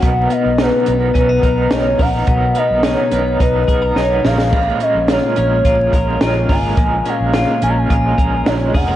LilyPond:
<<
  \new Staff \with { instrumentName = "Soft synth lead" } { \time 4/4 \key bes \phrygian \tempo 4 = 107 ges''8 dis''8 b'4 b'4 des''8 fis''8~ | fis''8 dis''8 des''4 b'4 des''8 f''8~ | f''8 ees''8 des''4 des''4 des''8 aes''8~ | aes''8 f''8 f''8 aes''32 bes''32 aes''4~ aes''16 des''8 ges''8 | }
  \new Staff \with { instrumentName = "Clean electric guitar" } { \time 4/4 \key bes \phrygian b,8 b8 dis'8 b8 des'16 dis'16 ais'8 dis'8 ais'8 | b,8 b8 dis'8 b8 dis'8 aes'16 ais'16 dis'8 bes,8 | bes,8 des'8 f'8 des'8 f'8 bes'8 f'8 bes'8 | bes,8 des'8 f'8 des'8 f'8 bes'4 aes'16 bes'16 | }
  \new Staff \with { instrumentName = "Overdriven electric guitar" } { \time 4/4 \key bes \phrygian <b, fis b dis' ais'>8 <b dis' ais'>8 <fis b dis' ais'>8 <b dis' ais'>8 <b, fis b dis' ais'>8 <b dis' ais'>8 <fis b dis' ais'>8 <b dis' ais'>8 | <b, fis b dis' ais'>8 <b dis' ais'>8 <fis b dis' ais'>8 <b dis' ais'>8 <b, fis b dis' ais'>8 <b dis' ais'>8 <fis b dis' ais'>8 <aes des' f' bes'>8 | <bes, f aes des' f' bes'>8 <aes des' f' bes'>8 <aes des' f' bes'>8 <aes des' f' bes'>8 <bes, f aes des' f' bes'>8 <aes des' f' bes'>8 <aes des' f' bes'>8 <aes des' f' bes'>8 | <bes, f aes des' f' bes'>8 <aes des' f' bes'>8 <aes des' f' bes'>8 <aes des' f' bes'>8 <bes, f aes des' f' bes'>8 <aes des' f' bes'>8 <aes des' f' bes'>8 <aes des' f' bes'>8 | }
  \new Staff \with { instrumentName = "Fingered electric bass" } { \clef bass \time 4/4 \key bes \phrygian b,,8 r16 b,,8 r16 b,,8 b,,8 b,,8 b,,8 ais,,8 | b,,8 r16 b,,8 r16 b,,8 b,,8 b,,8 b,,8 bes,,8~ | bes,,8 r16 bes,,8 r16 bes,,8 bes,,8 bes,,8 bes,,8 aes,,8 | bes,,8 r16 bes,,8 r16 bes,,8 bes,,8 bes,,8 bes,,8 f,,8 | }
  \new DrumStaff \with { instrumentName = "Drums" } \drummode { \time 4/4 <hh bd>8 hh8 <hh sn>8 hh8 <hh bd>8 <hh bd>8 <hh sn>8 <hho bd>8 | <hh bd>8 hh8 <hh sn>8 hh8 <hh bd>8 <hh bd>8 sn8 sn16 sn16 | <cymc bd>8 hh8 <hh sn>8 hh8 <hh bd>8 <hh bd>8 <hh sn>8 <hho bd>8 | <hh bd>8 hh8 <hh sn>8 hh8 <hh bd>8 <hh bd>8 <hh sn>8 <hho bd>8 | }
>>